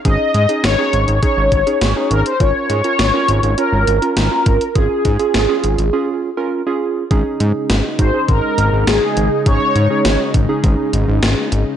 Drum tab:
HH |x-xxx-xxx-xxx-xx|x-xxx-xxx-xxx-xx|x-xxx-xx--------|x-x-x-x-x-x-x-x-|
SD |----o-------o---|----o-------o---|----o-----------|----o-------o---|
BD |o-------o-o-----|o-------------o-|o-o-------------|o-----o-o-------|

HH |x-x-x-x-x-x-x-x-|
SD |----o-------o---|
BD |o-----o-o-------|